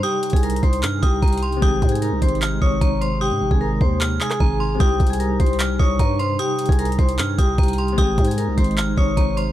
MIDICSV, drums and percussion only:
0, 0, Header, 1, 2, 480
1, 0, Start_track
1, 0, Tempo, 397351
1, 41, Time_signature, 4, 2, 24, 8
1, 11501, End_track
2, 0, Start_track
2, 0, Title_t, "Drums"
2, 41, Note_on_c, 9, 42, 72
2, 162, Note_off_c, 9, 42, 0
2, 276, Note_on_c, 9, 46, 90
2, 281, Note_on_c, 9, 42, 74
2, 360, Note_off_c, 9, 42, 0
2, 360, Note_on_c, 9, 42, 73
2, 397, Note_off_c, 9, 46, 0
2, 400, Note_on_c, 9, 36, 88
2, 440, Note_off_c, 9, 42, 0
2, 440, Note_on_c, 9, 42, 72
2, 520, Note_off_c, 9, 42, 0
2, 520, Note_on_c, 9, 42, 75
2, 521, Note_off_c, 9, 36, 0
2, 600, Note_off_c, 9, 42, 0
2, 600, Note_on_c, 9, 42, 75
2, 681, Note_off_c, 9, 42, 0
2, 681, Note_on_c, 9, 42, 71
2, 760, Note_on_c, 9, 36, 84
2, 761, Note_off_c, 9, 42, 0
2, 761, Note_on_c, 9, 42, 41
2, 881, Note_off_c, 9, 36, 0
2, 881, Note_off_c, 9, 42, 0
2, 881, Note_on_c, 9, 42, 73
2, 999, Note_off_c, 9, 42, 0
2, 999, Note_on_c, 9, 42, 86
2, 1000, Note_on_c, 9, 39, 122
2, 1120, Note_off_c, 9, 42, 0
2, 1121, Note_off_c, 9, 39, 0
2, 1242, Note_on_c, 9, 36, 98
2, 1243, Note_on_c, 9, 42, 77
2, 1362, Note_off_c, 9, 36, 0
2, 1364, Note_off_c, 9, 42, 0
2, 1480, Note_on_c, 9, 36, 108
2, 1481, Note_on_c, 9, 42, 48
2, 1542, Note_off_c, 9, 42, 0
2, 1542, Note_on_c, 9, 42, 58
2, 1601, Note_off_c, 9, 36, 0
2, 1602, Note_off_c, 9, 42, 0
2, 1602, Note_on_c, 9, 42, 70
2, 1661, Note_off_c, 9, 42, 0
2, 1661, Note_on_c, 9, 42, 78
2, 1721, Note_off_c, 9, 42, 0
2, 1721, Note_on_c, 9, 42, 47
2, 1841, Note_off_c, 9, 42, 0
2, 1841, Note_on_c, 9, 42, 47
2, 1960, Note_on_c, 9, 36, 120
2, 1961, Note_off_c, 9, 42, 0
2, 1961, Note_on_c, 9, 42, 71
2, 2081, Note_off_c, 9, 36, 0
2, 2081, Note_off_c, 9, 42, 0
2, 2200, Note_on_c, 9, 36, 99
2, 2201, Note_on_c, 9, 42, 52
2, 2281, Note_off_c, 9, 42, 0
2, 2281, Note_on_c, 9, 42, 73
2, 2321, Note_off_c, 9, 36, 0
2, 2361, Note_off_c, 9, 42, 0
2, 2361, Note_on_c, 9, 42, 87
2, 2442, Note_off_c, 9, 42, 0
2, 2442, Note_on_c, 9, 42, 89
2, 2563, Note_off_c, 9, 42, 0
2, 2681, Note_on_c, 9, 36, 84
2, 2681, Note_on_c, 9, 42, 70
2, 2761, Note_off_c, 9, 42, 0
2, 2761, Note_on_c, 9, 42, 55
2, 2802, Note_off_c, 9, 36, 0
2, 2841, Note_off_c, 9, 42, 0
2, 2841, Note_on_c, 9, 42, 40
2, 2919, Note_off_c, 9, 42, 0
2, 2919, Note_on_c, 9, 42, 83
2, 2921, Note_on_c, 9, 39, 125
2, 3040, Note_off_c, 9, 42, 0
2, 3042, Note_off_c, 9, 39, 0
2, 3161, Note_on_c, 9, 36, 96
2, 3282, Note_off_c, 9, 36, 0
2, 3400, Note_on_c, 9, 36, 110
2, 3402, Note_on_c, 9, 42, 78
2, 3521, Note_off_c, 9, 36, 0
2, 3523, Note_off_c, 9, 42, 0
2, 3644, Note_on_c, 9, 42, 61
2, 3764, Note_off_c, 9, 42, 0
2, 4240, Note_on_c, 9, 36, 90
2, 4361, Note_off_c, 9, 36, 0
2, 4600, Note_on_c, 9, 36, 84
2, 4721, Note_off_c, 9, 36, 0
2, 4841, Note_on_c, 9, 39, 117
2, 4961, Note_off_c, 9, 39, 0
2, 5080, Note_on_c, 9, 39, 102
2, 5200, Note_off_c, 9, 39, 0
2, 5200, Note_on_c, 9, 37, 94
2, 5200, Note_on_c, 9, 39, 66
2, 5319, Note_on_c, 9, 36, 106
2, 5321, Note_off_c, 9, 37, 0
2, 5321, Note_off_c, 9, 39, 0
2, 5440, Note_off_c, 9, 36, 0
2, 5800, Note_on_c, 9, 36, 116
2, 5800, Note_on_c, 9, 42, 71
2, 5921, Note_off_c, 9, 36, 0
2, 5921, Note_off_c, 9, 42, 0
2, 6040, Note_on_c, 9, 36, 98
2, 6040, Note_on_c, 9, 42, 53
2, 6120, Note_off_c, 9, 42, 0
2, 6120, Note_on_c, 9, 42, 70
2, 6160, Note_off_c, 9, 36, 0
2, 6201, Note_off_c, 9, 42, 0
2, 6201, Note_on_c, 9, 42, 88
2, 6282, Note_off_c, 9, 42, 0
2, 6282, Note_on_c, 9, 42, 86
2, 6403, Note_off_c, 9, 42, 0
2, 6521, Note_on_c, 9, 36, 86
2, 6521, Note_on_c, 9, 42, 67
2, 6601, Note_off_c, 9, 42, 0
2, 6601, Note_on_c, 9, 42, 54
2, 6641, Note_off_c, 9, 36, 0
2, 6681, Note_off_c, 9, 42, 0
2, 6681, Note_on_c, 9, 42, 41
2, 6759, Note_off_c, 9, 42, 0
2, 6759, Note_on_c, 9, 42, 85
2, 6760, Note_on_c, 9, 39, 125
2, 6880, Note_off_c, 9, 42, 0
2, 6881, Note_off_c, 9, 39, 0
2, 7002, Note_on_c, 9, 36, 94
2, 7122, Note_off_c, 9, 36, 0
2, 7240, Note_on_c, 9, 36, 107
2, 7241, Note_on_c, 9, 42, 78
2, 7361, Note_off_c, 9, 36, 0
2, 7362, Note_off_c, 9, 42, 0
2, 7484, Note_on_c, 9, 42, 57
2, 7604, Note_off_c, 9, 42, 0
2, 7721, Note_on_c, 9, 42, 75
2, 7841, Note_off_c, 9, 42, 0
2, 7956, Note_on_c, 9, 46, 92
2, 7961, Note_on_c, 9, 42, 72
2, 8041, Note_off_c, 9, 42, 0
2, 8041, Note_on_c, 9, 42, 73
2, 8077, Note_off_c, 9, 46, 0
2, 8081, Note_on_c, 9, 36, 91
2, 8120, Note_off_c, 9, 42, 0
2, 8120, Note_on_c, 9, 42, 71
2, 8200, Note_off_c, 9, 42, 0
2, 8200, Note_on_c, 9, 42, 74
2, 8201, Note_off_c, 9, 36, 0
2, 8279, Note_off_c, 9, 42, 0
2, 8279, Note_on_c, 9, 42, 76
2, 8360, Note_off_c, 9, 42, 0
2, 8360, Note_on_c, 9, 42, 70
2, 8440, Note_off_c, 9, 42, 0
2, 8440, Note_on_c, 9, 42, 41
2, 8441, Note_on_c, 9, 36, 82
2, 8560, Note_off_c, 9, 42, 0
2, 8560, Note_on_c, 9, 42, 72
2, 8561, Note_off_c, 9, 36, 0
2, 8679, Note_off_c, 9, 42, 0
2, 8679, Note_on_c, 9, 42, 84
2, 8680, Note_on_c, 9, 39, 121
2, 8800, Note_off_c, 9, 42, 0
2, 8801, Note_off_c, 9, 39, 0
2, 8922, Note_on_c, 9, 36, 97
2, 8922, Note_on_c, 9, 42, 78
2, 9042, Note_off_c, 9, 36, 0
2, 9043, Note_off_c, 9, 42, 0
2, 9160, Note_on_c, 9, 36, 107
2, 9160, Note_on_c, 9, 42, 48
2, 9221, Note_off_c, 9, 42, 0
2, 9221, Note_on_c, 9, 42, 59
2, 9281, Note_off_c, 9, 36, 0
2, 9281, Note_off_c, 9, 42, 0
2, 9281, Note_on_c, 9, 42, 71
2, 9341, Note_off_c, 9, 42, 0
2, 9341, Note_on_c, 9, 42, 79
2, 9400, Note_off_c, 9, 42, 0
2, 9400, Note_on_c, 9, 42, 48
2, 9521, Note_off_c, 9, 42, 0
2, 9522, Note_on_c, 9, 42, 45
2, 9640, Note_off_c, 9, 42, 0
2, 9640, Note_on_c, 9, 42, 76
2, 9641, Note_on_c, 9, 36, 111
2, 9761, Note_off_c, 9, 36, 0
2, 9761, Note_off_c, 9, 42, 0
2, 9880, Note_on_c, 9, 36, 101
2, 9881, Note_on_c, 9, 42, 53
2, 9961, Note_off_c, 9, 42, 0
2, 9961, Note_on_c, 9, 42, 72
2, 10001, Note_off_c, 9, 36, 0
2, 10041, Note_off_c, 9, 42, 0
2, 10041, Note_on_c, 9, 42, 91
2, 10122, Note_off_c, 9, 42, 0
2, 10122, Note_on_c, 9, 42, 92
2, 10243, Note_off_c, 9, 42, 0
2, 10361, Note_on_c, 9, 36, 84
2, 10361, Note_on_c, 9, 42, 67
2, 10441, Note_off_c, 9, 42, 0
2, 10441, Note_on_c, 9, 42, 54
2, 10482, Note_off_c, 9, 36, 0
2, 10521, Note_off_c, 9, 42, 0
2, 10521, Note_on_c, 9, 42, 42
2, 10599, Note_off_c, 9, 42, 0
2, 10599, Note_on_c, 9, 42, 87
2, 10600, Note_on_c, 9, 39, 119
2, 10720, Note_off_c, 9, 42, 0
2, 10721, Note_off_c, 9, 39, 0
2, 10842, Note_on_c, 9, 36, 95
2, 10962, Note_off_c, 9, 36, 0
2, 11080, Note_on_c, 9, 36, 109
2, 11082, Note_on_c, 9, 42, 79
2, 11201, Note_off_c, 9, 36, 0
2, 11203, Note_off_c, 9, 42, 0
2, 11324, Note_on_c, 9, 42, 59
2, 11445, Note_off_c, 9, 42, 0
2, 11501, End_track
0, 0, End_of_file